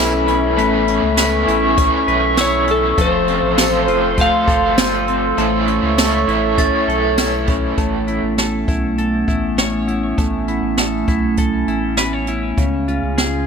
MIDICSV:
0, 0, Header, 1, 8, 480
1, 0, Start_track
1, 0, Key_signature, 3, "major"
1, 0, Tempo, 600000
1, 462, Time_signature, 4, 2, 24, 8
1, 10773, End_track
2, 0, Start_track
2, 0, Title_t, "Glockenspiel"
2, 0, Program_c, 0, 9
2, 1903, Note_on_c, 0, 88, 62
2, 2590, Note_off_c, 0, 88, 0
2, 5266, Note_on_c, 0, 93, 73
2, 6432, Note_off_c, 0, 93, 0
2, 10773, End_track
3, 0, Start_track
3, 0, Title_t, "Electric slide guitar"
3, 0, Program_c, 1, 29
3, 1927, Note_on_c, 1, 73, 80
3, 2161, Note_off_c, 1, 73, 0
3, 2169, Note_on_c, 1, 69, 96
3, 2402, Note_off_c, 1, 69, 0
3, 2409, Note_on_c, 1, 72, 100
3, 3370, Note_on_c, 1, 77, 101
3, 3384, Note_off_c, 1, 72, 0
3, 3804, Note_off_c, 1, 77, 0
3, 10773, End_track
4, 0, Start_track
4, 0, Title_t, "Ambient pad"
4, 0, Program_c, 2, 92
4, 0, Note_on_c, 2, 61, 76
4, 0, Note_on_c, 2, 69, 94
4, 0, Note_on_c, 2, 76, 80
4, 0, Note_on_c, 2, 83, 90
4, 439, Note_off_c, 2, 83, 0
4, 468, Note_on_c, 2, 85, 97
4, 2347, Note_off_c, 2, 61, 0
4, 2348, Note_off_c, 2, 76, 0
4, 2349, Note_off_c, 2, 69, 0
4, 2366, Note_off_c, 2, 85, 0
4, 2378, Note_on_c, 2, 72, 80
4, 2380, Note_on_c, 2, 77, 77
4, 2381, Note_on_c, 2, 84, 94
4, 2382, Note_on_c, 2, 69, 90
4, 4281, Note_off_c, 2, 72, 0
4, 4282, Note_off_c, 2, 77, 0
4, 4282, Note_off_c, 2, 84, 0
4, 4303, Note_on_c, 2, 73, 81
4, 4307, Note_on_c, 2, 76, 86
4, 4309, Note_on_c, 2, 85, 95
4, 6190, Note_off_c, 2, 69, 0
4, 6203, Note_off_c, 2, 73, 0
4, 6205, Note_off_c, 2, 76, 0
4, 6206, Note_off_c, 2, 85, 0
4, 6218, Note_on_c, 2, 57, 79
4, 6222, Note_on_c, 2, 61, 86
4, 6224, Note_on_c, 2, 59, 78
4, 10028, Note_off_c, 2, 57, 0
4, 10031, Note_off_c, 2, 59, 0
4, 10058, Note_on_c, 2, 65, 66
4, 10059, Note_on_c, 2, 49, 73
4, 10061, Note_on_c, 2, 68, 94
4, 10773, Note_off_c, 2, 49, 0
4, 10773, Note_off_c, 2, 61, 0
4, 10773, Note_off_c, 2, 65, 0
4, 10773, Note_off_c, 2, 68, 0
4, 10773, End_track
5, 0, Start_track
5, 0, Title_t, "Clean electric guitar"
5, 0, Program_c, 3, 27
5, 0, Note_on_c, 3, 57, 84
5, 0, Note_on_c, 3, 61, 63
5, 0, Note_on_c, 3, 64, 65
5, 0, Note_on_c, 3, 71, 65
5, 210, Note_off_c, 3, 61, 0
5, 220, Note_on_c, 3, 61, 65
5, 454, Note_off_c, 3, 71, 0
5, 455, Note_off_c, 3, 57, 0
5, 459, Note_on_c, 3, 57, 83
5, 464, Note_on_c, 3, 71, 71
5, 696, Note_off_c, 3, 61, 0
5, 706, Note_on_c, 3, 61, 64
5, 931, Note_off_c, 3, 71, 0
5, 941, Note_on_c, 3, 71, 64
5, 1170, Note_off_c, 3, 64, 0
5, 1179, Note_on_c, 3, 64, 59
5, 1410, Note_off_c, 3, 61, 0
5, 1419, Note_on_c, 3, 61, 66
5, 1653, Note_off_c, 3, 71, 0
5, 1662, Note_on_c, 3, 71, 67
5, 1892, Note_off_c, 3, 64, 0
5, 1902, Note_on_c, 3, 64, 64
5, 2133, Note_off_c, 3, 61, 0
5, 2142, Note_on_c, 3, 61, 67
5, 2382, Note_off_c, 3, 71, 0
5, 2383, Note_on_c, 3, 53, 83
5, 2386, Note_on_c, 3, 69, 77
5, 2430, Note_off_c, 3, 61, 0
5, 2430, Note_off_c, 3, 64, 0
5, 2622, Note_on_c, 3, 60, 64
5, 2858, Note_off_c, 3, 69, 0
5, 2862, Note_on_c, 3, 69, 69
5, 3101, Note_on_c, 3, 65, 64
5, 3259, Note_off_c, 3, 57, 0
5, 3343, Note_on_c, 3, 57, 62
5, 3578, Note_off_c, 3, 69, 0
5, 3581, Note_on_c, 3, 69, 68
5, 3812, Note_off_c, 3, 65, 0
5, 3822, Note_on_c, 3, 65, 66
5, 4056, Note_off_c, 3, 60, 0
5, 4066, Note_on_c, 3, 60, 64
5, 4299, Note_off_c, 3, 57, 0
5, 4302, Note_off_c, 3, 53, 0
5, 4303, Note_off_c, 3, 69, 0
5, 4303, Note_on_c, 3, 57, 88
5, 4307, Note_on_c, 3, 69, 70
5, 4350, Note_off_c, 3, 65, 0
5, 4352, Note_off_c, 3, 60, 0
5, 4541, Note_on_c, 3, 61, 57
5, 4782, Note_off_c, 3, 69, 0
5, 4785, Note_on_c, 3, 69, 70
5, 5022, Note_on_c, 3, 64, 60
5, 5261, Note_off_c, 3, 61, 0
5, 5264, Note_on_c, 3, 61, 63
5, 5501, Note_off_c, 3, 69, 0
5, 5504, Note_on_c, 3, 69, 64
5, 5740, Note_off_c, 3, 64, 0
5, 5743, Note_on_c, 3, 64, 65
5, 5978, Note_off_c, 3, 61, 0
5, 5981, Note_on_c, 3, 61, 64
5, 6220, Note_off_c, 3, 57, 0
5, 6224, Note_on_c, 3, 57, 74
5, 6458, Note_off_c, 3, 64, 0
5, 6461, Note_on_c, 3, 64, 52
5, 6703, Note_off_c, 3, 69, 0
5, 6706, Note_on_c, 3, 69, 52
5, 6937, Note_off_c, 3, 64, 0
5, 6947, Note_on_c, 3, 64, 48
5, 7178, Note_off_c, 3, 69, 0
5, 7187, Note_on_c, 3, 69, 50
5, 7414, Note_off_c, 3, 64, 0
5, 7424, Note_on_c, 3, 64, 52
5, 7666, Note_on_c, 3, 73, 56
5, 7893, Note_off_c, 3, 64, 0
5, 7902, Note_on_c, 3, 64, 45
5, 8134, Note_off_c, 3, 57, 0
5, 8143, Note_on_c, 3, 57, 69
5, 8376, Note_off_c, 3, 64, 0
5, 8386, Note_on_c, 3, 64, 47
5, 8616, Note_off_c, 3, 69, 0
5, 8626, Note_on_c, 3, 69, 54
5, 8781, Note_off_c, 3, 61, 0
5, 8855, Note_off_c, 3, 64, 0
5, 8865, Note_on_c, 3, 64, 49
5, 9097, Note_off_c, 3, 69, 0
5, 9106, Note_on_c, 3, 69, 49
5, 9334, Note_off_c, 3, 64, 0
5, 9344, Note_on_c, 3, 64, 50
5, 9580, Note_off_c, 3, 73, 0
5, 9583, Note_on_c, 3, 71, 55
5, 9705, Note_off_c, 3, 71, 0
5, 9705, Note_on_c, 3, 73, 50
5, 9817, Note_off_c, 3, 64, 0
5, 9827, Note_on_c, 3, 64, 52
5, 10063, Note_off_c, 3, 57, 0
5, 10066, Note_on_c, 3, 49, 68
5, 10111, Note_off_c, 3, 73, 0
5, 10112, Note_off_c, 3, 64, 0
5, 10112, Note_off_c, 3, 69, 0
5, 10305, Note_on_c, 3, 65, 51
5, 10541, Note_on_c, 3, 68, 54
5, 10771, Note_off_c, 3, 65, 0
5, 10773, Note_off_c, 3, 49, 0
5, 10773, Note_off_c, 3, 68, 0
5, 10773, End_track
6, 0, Start_track
6, 0, Title_t, "Overdriven electric guitar"
6, 0, Program_c, 4, 29
6, 0, Note_on_c, 4, 52, 59
6, 0, Note_on_c, 4, 59, 67
6, 0, Note_on_c, 4, 61, 61
6, 0, Note_on_c, 4, 64, 66
6, 447, Note_off_c, 4, 52, 0
6, 452, Note_on_c, 4, 45, 79
6, 459, Note_off_c, 4, 59, 0
6, 464, Note_on_c, 4, 52, 77
6, 466, Note_off_c, 4, 61, 0
6, 468, Note_on_c, 4, 59, 80
6, 471, Note_off_c, 4, 64, 0
6, 476, Note_on_c, 4, 61, 83
6, 480, Note_on_c, 4, 64, 85
6, 922, Note_off_c, 4, 52, 0
6, 932, Note_on_c, 4, 52, 70
6, 937, Note_off_c, 4, 45, 0
6, 939, Note_off_c, 4, 59, 0
6, 948, Note_on_c, 4, 59, 76
6, 949, Note_off_c, 4, 61, 0
6, 951, Note_off_c, 4, 64, 0
6, 958, Note_on_c, 4, 61, 77
6, 976, Note_on_c, 4, 64, 82
6, 1397, Note_off_c, 4, 52, 0
6, 1407, Note_on_c, 4, 52, 69
6, 1425, Note_off_c, 4, 59, 0
6, 1430, Note_off_c, 4, 61, 0
6, 1439, Note_off_c, 4, 64, 0
6, 1441, Note_on_c, 4, 59, 80
6, 1473, Note_on_c, 4, 61, 78
6, 1498, Note_on_c, 4, 64, 74
6, 2374, Note_off_c, 4, 52, 0
6, 2375, Note_on_c, 4, 41, 80
6, 2381, Note_on_c, 4, 48, 67
6, 2386, Note_on_c, 4, 53, 81
6, 2388, Note_off_c, 4, 59, 0
6, 2392, Note_on_c, 4, 57, 70
6, 2397, Note_off_c, 4, 61, 0
6, 2399, Note_off_c, 4, 64, 0
6, 2400, Note_on_c, 4, 60, 83
6, 2403, Note_on_c, 4, 65, 82
6, 2845, Note_off_c, 4, 53, 0
6, 2855, Note_on_c, 4, 53, 58
6, 2858, Note_off_c, 4, 41, 0
6, 2861, Note_off_c, 4, 48, 0
6, 2869, Note_off_c, 4, 57, 0
6, 2871, Note_off_c, 4, 60, 0
6, 2872, Note_off_c, 4, 65, 0
6, 2872, Note_on_c, 4, 57, 64
6, 2883, Note_on_c, 4, 60, 67
6, 2898, Note_on_c, 4, 65, 67
6, 3310, Note_off_c, 4, 53, 0
6, 3319, Note_on_c, 4, 53, 66
6, 3352, Note_off_c, 4, 60, 0
6, 3354, Note_off_c, 4, 57, 0
6, 3357, Note_on_c, 4, 57, 70
6, 3360, Note_off_c, 4, 65, 0
6, 3387, Note_on_c, 4, 60, 65
6, 3411, Note_on_c, 4, 65, 69
6, 4290, Note_off_c, 4, 53, 0
6, 4298, Note_on_c, 4, 45, 76
6, 4306, Note_on_c, 4, 52, 88
6, 4308, Note_off_c, 4, 57, 0
6, 4311, Note_on_c, 4, 57, 86
6, 4315, Note_off_c, 4, 60, 0
6, 4318, Note_on_c, 4, 61, 84
6, 4320, Note_off_c, 4, 65, 0
6, 4323, Note_on_c, 4, 64, 87
6, 4769, Note_off_c, 4, 52, 0
6, 4772, Note_on_c, 4, 52, 77
6, 4780, Note_off_c, 4, 45, 0
6, 4789, Note_off_c, 4, 57, 0
6, 4793, Note_on_c, 4, 57, 73
6, 4799, Note_off_c, 4, 61, 0
6, 4802, Note_on_c, 4, 61, 71
6, 4811, Note_off_c, 4, 64, 0
6, 4815, Note_on_c, 4, 64, 73
6, 5237, Note_off_c, 4, 52, 0
6, 5241, Note_on_c, 4, 52, 67
6, 5271, Note_off_c, 4, 57, 0
6, 5274, Note_on_c, 4, 57, 80
6, 5302, Note_off_c, 4, 61, 0
6, 5306, Note_on_c, 4, 61, 74
6, 5328, Note_off_c, 4, 64, 0
6, 5331, Note_on_c, 4, 64, 75
6, 6656, Note_off_c, 4, 52, 0
6, 6656, Note_off_c, 4, 57, 0
6, 6656, Note_off_c, 4, 61, 0
6, 6656, Note_off_c, 4, 64, 0
6, 10773, End_track
7, 0, Start_track
7, 0, Title_t, "Sub bass"
7, 0, Program_c, 5, 38
7, 0, Note_on_c, 5, 35, 101
7, 460, Note_on_c, 5, 33, 97
7, 472, Note_off_c, 5, 35, 0
7, 803, Note_off_c, 5, 33, 0
7, 822, Note_on_c, 5, 37, 92
7, 1164, Note_off_c, 5, 37, 0
7, 1181, Note_on_c, 5, 33, 95
7, 1523, Note_off_c, 5, 33, 0
7, 1659, Note_on_c, 5, 35, 96
7, 2349, Note_off_c, 5, 35, 0
7, 2382, Note_on_c, 5, 29, 102
7, 2724, Note_off_c, 5, 29, 0
7, 2738, Note_on_c, 5, 33, 93
7, 3101, Note_on_c, 5, 29, 109
7, 3113, Note_off_c, 5, 33, 0
7, 3443, Note_off_c, 5, 29, 0
7, 3579, Note_on_c, 5, 31, 88
7, 4268, Note_off_c, 5, 31, 0
7, 4299, Note_on_c, 5, 33, 115
7, 4642, Note_off_c, 5, 33, 0
7, 4660, Note_on_c, 5, 37, 97
7, 5003, Note_off_c, 5, 37, 0
7, 5021, Note_on_c, 5, 33, 104
7, 5363, Note_off_c, 5, 33, 0
7, 5501, Note_on_c, 5, 35, 86
7, 6189, Note_off_c, 5, 35, 0
7, 6220, Note_on_c, 5, 33, 94
7, 6563, Note_off_c, 5, 33, 0
7, 6582, Note_on_c, 5, 33, 82
7, 6924, Note_off_c, 5, 33, 0
7, 6944, Note_on_c, 5, 35, 82
7, 7399, Note_off_c, 5, 35, 0
7, 7425, Note_on_c, 5, 33, 84
7, 8111, Note_off_c, 5, 33, 0
7, 8143, Note_on_c, 5, 33, 83
7, 8484, Note_off_c, 5, 33, 0
7, 8496, Note_on_c, 5, 33, 81
7, 8841, Note_off_c, 5, 33, 0
7, 8862, Note_on_c, 5, 35, 86
7, 9318, Note_off_c, 5, 35, 0
7, 9338, Note_on_c, 5, 33, 94
7, 10028, Note_off_c, 5, 33, 0
7, 10059, Note_on_c, 5, 37, 87
7, 10402, Note_off_c, 5, 37, 0
7, 10422, Note_on_c, 5, 37, 90
7, 10764, Note_off_c, 5, 37, 0
7, 10773, End_track
8, 0, Start_track
8, 0, Title_t, "Drums"
8, 223, Note_on_c, 9, 42, 57
8, 303, Note_off_c, 9, 42, 0
8, 466, Note_on_c, 9, 42, 76
8, 546, Note_off_c, 9, 42, 0
8, 701, Note_on_c, 9, 42, 48
8, 781, Note_off_c, 9, 42, 0
8, 937, Note_on_c, 9, 38, 109
8, 937, Note_on_c, 9, 42, 69
8, 939, Note_on_c, 9, 54, 63
8, 1017, Note_off_c, 9, 38, 0
8, 1017, Note_off_c, 9, 42, 0
8, 1019, Note_off_c, 9, 54, 0
8, 1185, Note_on_c, 9, 42, 50
8, 1265, Note_off_c, 9, 42, 0
8, 1418, Note_on_c, 9, 42, 82
8, 1423, Note_on_c, 9, 36, 93
8, 1498, Note_off_c, 9, 42, 0
8, 1503, Note_off_c, 9, 36, 0
8, 1662, Note_on_c, 9, 42, 42
8, 1742, Note_off_c, 9, 42, 0
8, 1899, Note_on_c, 9, 38, 109
8, 1899, Note_on_c, 9, 54, 64
8, 1902, Note_on_c, 9, 42, 60
8, 1979, Note_off_c, 9, 38, 0
8, 1979, Note_off_c, 9, 54, 0
8, 1982, Note_off_c, 9, 42, 0
8, 2139, Note_on_c, 9, 42, 55
8, 2219, Note_off_c, 9, 42, 0
8, 2382, Note_on_c, 9, 42, 70
8, 2383, Note_on_c, 9, 36, 103
8, 2462, Note_off_c, 9, 42, 0
8, 2463, Note_off_c, 9, 36, 0
8, 2622, Note_on_c, 9, 42, 46
8, 2702, Note_off_c, 9, 42, 0
8, 2862, Note_on_c, 9, 38, 114
8, 2862, Note_on_c, 9, 42, 68
8, 2864, Note_on_c, 9, 54, 67
8, 2942, Note_off_c, 9, 38, 0
8, 2942, Note_off_c, 9, 42, 0
8, 2944, Note_off_c, 9, 54, 0
8, 3104, Note_on_c, 9, 42, 49
8, 3184, Note_off_c, 9, 42, 0
8, 3340, Note_on_c, 9, 42, 80
8, 3343, Note_on_c, 9, 36, 89
8, 3420, Note_off_c, 9, 42, 0
8, 3423, Note_off_c, 9, 36, 0
8, 3581, Note_on_c, 9, 36, 91
8, 3582, Note_on_c, 9, 42, 45
8, 3661, Note_off_c, 9, 36, 0
8, 3662, Note_off_c, 9, 42, 0
8, 3822, Note_on_c, 9, 38, 119
8, 3822, Note_on_c, 9, 54, 64
8, 3825, Note_on_c, 9, 42, 57
8, 3902, Note_off_c, 9, 38, 0
8, 3902, Note_off_c, 9, 54, 0
8, 3905, Note_off_c, 9, 42, 0
8, 4062, Note_on_c, 9, 42, 54
8, 4142, Note_off_c, 9, 42, 0
8, 4301, Note_on_c, 9, 42, 67
8, 4381, Note_off_c, 9, 42, 0
8, 4541, Note_on_c, 9, 42, 50
8, 4621, Note_off_c, 9, 42, 0
8, 4785, Note_on_c, 9, 38, 109
8, 4785, Note_on_c, 9, 42, 66
8, 4787, Note_on_c, 9, 54, 62
8, 4865, Note_off_c, 9, 38, 0
8, 4865, Note_off_c, 9, 42, 0
8, 4867, Note_off_c, 9, 54, 0
8, 5028, Note_on_c, 9, 42, 51
8, 5108, Note_off_c, 9, 42, 0
8, 5263, Note_on_c, 9, 42, 76
8, 5264, Note_on_c, 9, 36, 86
8, 5343, Note_off_c, 9, 42, 0
8, 5344, Note_off_c, 9, 36, 0
8, 5513, Note_on_c, 9, 42, 40
8, 5593, Note_off_c, 9, 42, 0
8, 5742, Note_on_c, 9, 38, 104
8, 5742, Note_on_c, 9, 54, 64
8, 5745, Note_on_c, 9, 42, 56
8, 5822, Note_off_c, 9, 38, 0
8, 5822, Note_off_c, 9, 54, 0
8, 5825, Note_off_c, 9, 42, 0
8, 5979, Note_on_c, 9, 42, 55
8, 5984, Note_on_c, 9, 36, 96
8, 6059, Note_off_c, 9, 42, 0
8, 6064, Note_off_c, 9, 36, 0
8, 6221, Note_on_c, 9, 42, 60
8, 6222, Note_on_c, 9, 36, 83
8, 6301, Note_off_c, 9, 42, 0
8, 6302, Note_off_c, 9, 36, 0
8, 6460, Note_on_c, 9, 42, 42
8, 6540, Note_off_c, 9, 42, 0
8, 6704, Note_on_c, 9, 38, 86
8, 6704, Note_on_c, 9, 42, 53
8, 6784, Note_off_c, 9, 38, 0
8, 6784, Note_off_c, 9, 42, 0
8, 6944, Note_on_c, 9, 36, 85
8, 6946, Note_on_c, 9, 42, 40
8, 7024, Note_off_c, 9, 36, 0
8, 7026, Note_off_c, 9, 42, 0
8, 7185, Note_on_c, 9, 42, 69
8, 7265, Note_off_c, 9, 42, 0
8, 7423, Note_on_c, 9, 36, 73
8, 7424, Note_on_c, 9, 42, 32
8, 7503, Note_off_c, 9, 36, 0
8, 7504, Note_off_c, 9, 42, 0
8, 7665, Note_on_c, 9, 38, 98
8, 7668, Note_on_c, 9, 42, 44
8, 7745, Note_off_c, 9, 38, 0
8, 7748, Note_off_c, 9, 42, 0
8, 7906, Note_on_c, 9, 42, 46
8, 7986, Note_off_c, 9, 42, 0
8, 8144, Note_on_c, 9, 36, 91
8, 8145, Note_on_c, 9, 42, 55
8, 8224, Note_off_c, 9, 36, 0
8, 8225, Note_off_c, 9, 42, 0
8, 8383, Note_on_c, 9, 42, 41
8, 8463, Note_off_c, 9, 42, 0
8, 8620, Note_on_c, 9, 38, 88
8, 8620, Note_on_c, 9, 42, 55
8, 8700, Note_off_c, 9, 38, 0
8, 8700, Note_off_c, 9, 42, 0
8, 8863, Note_on_c, 9, 36, 76
8, 8863, Note_on_c, 9, 42, 42
8, 8943, Note_off_c, 9, 36, 0
8, 8943, Note_off_c, 9, 42, 0
8, 9098, Note_on_c, 9, 42, 70
8, 9102, Note_on_c, 9, 36, 78
8, 9178, Note_off_c, 9, 42, 0
8, 9182, Note_off_c, 9, 36, 0
8, 9343, Note_on_c, 9, 42, 36
8, 9423, Note_off_c, 9, 42, 0
8, 9576, Note_on_c, 9, 38, 97
8, 9579, Note_on_c, 9, 42, 50
8, 9656, Note_off_c, 9, 38, 0
8, 9659, Note_off_c, 9, 42, 0
8, 9814, Note_on_c, 9, 42, 46
8, 9894, Note_off_c, 9, 42, 0
8, 10060, Note_on_c, 9, 42, 59
8, 10061, Note_on_c, 9, 36, 88
8, 10140, Note_off_c, 9, 42, 0
8, 10141, Note_off_c, 9, 36, 0
8, 10305, Note_on_c, 9, 42, 39
8, 10385, Note_off_c, 9, 42, 0
8, 10544, Note_on_c, 9, 38, 85
8, 10544, Note_on_c, 9, 42, 53
8, 10624, Note_off_c, 9, 38, 0
8, 10624, Note_off_c, 9, 42, 0
8, 10773, End_track
0, 0, End_of_file